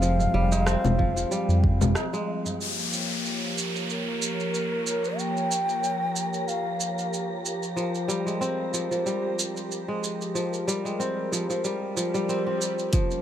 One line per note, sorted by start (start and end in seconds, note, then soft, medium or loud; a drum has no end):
0.00 0.28 F1 medium
0.00 2.57 F3 medium
0.00 0.97 F3 medium
0.00 0.33 G3 medium
0.00 2.57 G3 medium
0.00 0.51 G#3 medium
0.00 2.57 C4 loud
0.00 1.96 F5 loud
0.00 shaker medium
0.19 tabla tin medium
0.19 tabla ge medium
0.19 shaker soft
0.34 0.76 F1 loud
0.34 1.30 G3 loud
0.34 tabla tin medium
0.52 2.12 G#3 medium
0.52 tabla na medium
0.52 shaker medium
0.66 2.46 C4 loud
0.66 cross-stick loud
0.66 shaker medium
0.85 1.25 F1 loud
0.85 low conga medium
0.85 shaker soft
0.99 1.15 F3 medium
0.99 kick loud
0.99 tabla ge medium
1.16 2.66 F3 medium
1.16 shaker medium
1.31 2.66 G3 medium
1.31 shaker medium
1.49 1.96 F2 medium
1.49 shaker soft
1.64 kick medium
1.81 kick medium
1.81 low conga medium
1.81 shaker medium
1.95 cross-stick loud
1.95 tabla na medium
1.95 shaker medium
2.13 2.66 G#3 medium
2.13 shaker soft
2.28 tabla tin medium
2.45 tabla na soft
2.45 tabla ge medium
2.45 shaker medium
2.60 12.89 F3 medium
2.60 7.72 A#3 medium
2.60 12.89 G4 medium
2.60 12.94 A#4 medium
2.60 7.72 C#5 medium
2.60 12.94 A#5 medium
2.60 downlifter medium
2.60 shaker soft
2.79 shaker soft
2.93 shaker medium
3.11 shaker soft
3.25 shaker soft
3.58 shaker medium
3.76 shaker soft
3.90 5.20 A#4 medium
3.90 shaker soft
4.22 shaker medium
4.40 shaker soft
4.54 shaker soft
4.87 shaker medium
5.04 shaker soft
5.19 6.49 G5 loud
5.19 shaker soft
5.37 shaker soft
5.51 shaker medium
5.69 shaker soft
5.84 shaker soft
6.16 shaker medium
6.34 shaker soft
6.48 7.45 F5 medium
6.48 shaker soft
6.80 shaker medium
6.99 shaker soft
7.14 shaker soft
7.46 shaker medium
7.63 shaker soft
7.76 8.72 F3 medium
7.76 10.32 C5 medium
7.76 shaker soft
7.95 shaker soft
8.08 9.05 G3 medium
8.08 shaker medium
8.26 9.87 G#3 medium
8.26 shaker soft
8.41 10.21 C4 medium
8.41 shaker soft
8.73 8.90 F3 medium
8.73 shaker medium
8.91 10.34 F3 medium
8.91 shaker soft
9.06 10.66 G3 medium
9.06 shaker soft
9.39 shaker medium
9.57 shaker soft
9.72 shaker soft
9.88 10.84 G#3 medium
10.04 shaker medium
10.21 shaker soft
10.35 11.31 F3 medium
10.35 12.90 A#4 medium
10.35 shaker soft
10.54 shaker soft
10.68 11.63 G3 medium
10.68 shaker medium
10.85 12.98 G#3 medium
10.85 shaker soft
11.00 12.29 C4 medium
11.00 shaker soft
11.32 11.49 F3 medium
11.32 shaker medium
11.50 11.95 F3 medium
11.50 shaker soft
11.64 12.13 G3 medium
11.64 swell medium
11.64 shaker soft
11.97 12.92 F3 medium
11.97 shaker medium
12.14 12.98 G3 medium
12.14 shaker soft
12.29 12.46 C4 medium
12.29 shaker soft
12.47 13.22 C4 medium
12.61 shaker medium
12.79 shaker soft
12.93 13.22 F3 medium
12.93 13.22 G3 medium
12.93 13.22 A#3 medium
12.93 13.22 C#4 medium
12.93 kick loud
12.93 closed hi-hat soft
12.93 shaker soft
13.11 shaker soft